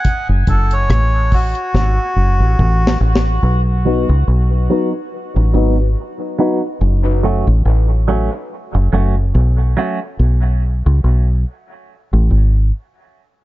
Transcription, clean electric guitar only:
3.85 4.07 F#3 medium
3.85 4.07 B3 medium
3.85 4.08 D#4 medium
3.85 4.08 F#4 medium
4.70 4.91 F#3 medium
4.70 4.92 B3 medium
4.70 4.92 D#4 medium
4.70 4.92 F#4 medium
4.94 muted clean electric guitar stroke soft
5.37 muted clean electric guitar stroke soft
5.54 5.75 F#3 medium
5.54 5.76 B3 medium
5.54 5.76 D#4 medium
5.54 5.77 F#4 medium
6.39 6.60 F#3 medium
6.39 6.60 B3 medium
6.39 6.61 D#4 medium
6.39 6.61 F#4 medium
7.23 7.45 F#3 medium
7.23 7.45 A3 medium
7.23 7.46 C#4 medium
7.23 7.46 F#4 medium
8.08 8.29 F#3 medium
8.08 8.30 A3 medium
8.08 8.30 C#4 medium
8.08 8.30 F#4 medium
8.33 muted clean electric guitar stroke soft
8.75 muted clean electric guitar stroke soft
8.93 9.14 F#3 medium
8.93 9.14 A3 medium
8.93 9.15 C#4 medium
8.93 9.15 F#4 medium
9.77 9.98 F#3 medium
9.77 9.99 A3 medium
9.77 9.99 C#4 medium
9.77 9.99 F#4 medium

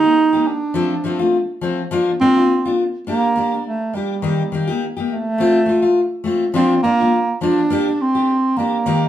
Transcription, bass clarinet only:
0.00 0.49 D#4 loud
0.47 1.63 D4 loud
2.20 2.75 C4 loud
3.07 3.61 A#3 loud
3.67 3.97 A3 medium
3.95 4.82 G3 medium
5.11 6.23 A3 loud
6.55 6.82 C4 loud
6.83 7.37 A#3 loud
7.43 8.03 D4 loud
8.01 8.59 C4 loud
8.57 9.09 A#3 loud

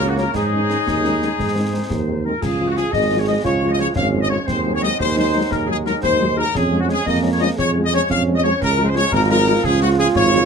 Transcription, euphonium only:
2.40 2.94 F4 loud
2.92 3.44 G#4 loud
3.44 3.92 F4 loud
3.95 4.49 C#4 loud
4.47 4.99 C4 medium
4.99 6.50 D#4 loud
6.54 7.02 C#4 loud
7.06 7.59 A#3 loud
7.58 8.09 G#3 medium
8.10 8.81 C#4 loud
9.12 10.45 F4 loud

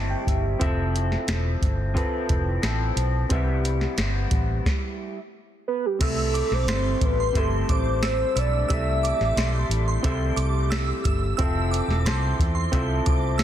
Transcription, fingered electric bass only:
0.00 0.14 G1 medium
0.27 0.54 G1 medium
0.61 1.15 F1 loud
1.28 1.55 E1 medium
1.61 2.02 G1 medium
2.30 2.56 F1 medium
2.63 2.90 A1 medium
2.96 3.23 B1 medium
3.31 3.85 C2 medium
3.97 4.25 G1 medium
4.31 4.58 A1 medium
6.01 6.41 C2 medium
6.51 6.64 B1 medium
6.66 6.94 G1 medium
7.01 7.28 A1 medium
7.35 7.62 G1 medium
7.69 8.23 A1 medium
8.36 8.63 B1 medium
8.70 9.10 C2 medium
9.20 9.34 A1 medium
9.36 9.63 B1 medium
9.69 9.96 A1 medium
10.04 10.31 C2 medium
10.36 10.91 C2 medium
11.05 11.32 G1 medium
11.39 11.79 F1 medium
11.88 12.07 E1 medium
12.05 12.32 C2 medium
12.39 12.66 E2 medium
12.73 13.00 C2 medium
13.06 13.43 C2 medium

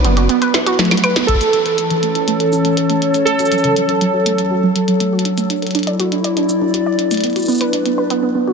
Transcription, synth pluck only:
0.05 0.13 B3 medium
0.17 0.25 F#4 medium
0.29 0.34 B3 loud
0.42 0.54 B4 loud
0.54 0.66 E4 medium
0.67 0.75 F#4 loud
0.79 0.84 A3 loud
0.91 0.96 F#3 medium
1.04 1.12 B4 loud
1.16 1.25 B3 medium
1.28 1.40 A3 medium
1.41 1.46 A3 medium
1.53 1.58 C#4 medium
1.66 1.71 A4 medium
1.78 1.87 A3 medium
1.90 2.02 E3 medium
2.03 2.11 A3 medium
2.15 2.24 E4 medium
2.28 2.33 A3 medium
2.40 2.52 A4 medium
2.52 2.61 C#4 medium
2.65 2.73 A3 medium
2.77 2.82 A4 loud
2.90 2.98 A3 medium
3.02 3.13 A3 medium
3.14 3.20 A3 medium
3.27 3.32 A3 medium
3.39 3.44 F#4 medium
3.52 3.60 F#3 medium
3.64 3.76 C#3 medium
3.76 3.85 F#3 medium
3.89 3.97 C#4 medium
4.01 4.06 F#3 loud
4.14 4.25 F#4 medium
4.26 4.35 A3 medium
4.38 4.47 F#3 medium
4.51 4.56 F#4 medium
4.63 4.72 F#3 medium
4.76 4.87 F#3 medium
4.88 4.93 F#3 medium
5.00 5.06 A3 medium
5.13 5.18 F#4 loud
5.25 5.34 D4 medium
5.38 5.49 A3 medium
5.50 5.58 D4 medium
5.62 5.71 A4 medium
5.75 5.80 D4 medium
5.87 5.99 D5 medium
6.00 6.08 F#4 loud
6.12 6.20 D4 medium
6.24 6.29 D5 medium
6.37 6.45 D4 medium
6.49 6.60 D4 medium
6.62 6.67 D4 medium
6.74 6.79 F#4 medium
6.86 6.91 D5 medium
6.99 7.07 D4 medium
7.11 7.23 A3 medium
7.24 7.32 B3 medium
7.36 7.44 F#4 medium
7.48 7.53 B3 loud
7.61 7.73 B4 loud
7.73 7.82 D4 medium
7.86 7.94 B3 medium
7.98 8.03 B4 medium
8.10 8.19 B3 loud
8.23 8.34 B3 medium
8.35 8.40 B3 medium
8.48 8.53 F#4 medium

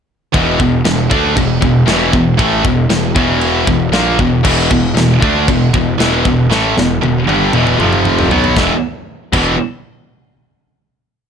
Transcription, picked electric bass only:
0.34 0.58 E1 medium
0.59 0.83 E1 medium
0.85 1.09 E1 medium
1.11 1.35 D2 medium
1.36 1.60 E1 medium
1.63 1.86 E1 medium
1.87 2.11 E1 loud
2.13 2.37 E1 medium
2.39 2.63 A1 loud
2.64 2.88 E1 medium
2.90 3.14 E1 medium
3.15 3.64 E1 loud
3.67 3.91 E1 medium
3.92 4.17 A#1 medium
4.18 4.42 E1 medium
4.44 4.68 E1 medium
4.71 4.94 E1 medium
4.95 5.20 E1 medium
5.22 5.46 D2 loud
5.48 5.72 E1 medium
5.73 5.97 E1 medium
5.99 6.23 E1 medium
6.25 6.49 E1 medium
6.50 6.74 A1 medium
6.77 7.00 E1 medium
7.03 7.26 E1 medium
7.27 7.51 G1 loud
7.53 7.77 E1 medium
7.77 8.26 F1 medium
8.29 8.53 B1 medium
8.56 8.70 E1 loud
9.33 9.56 E1 loud

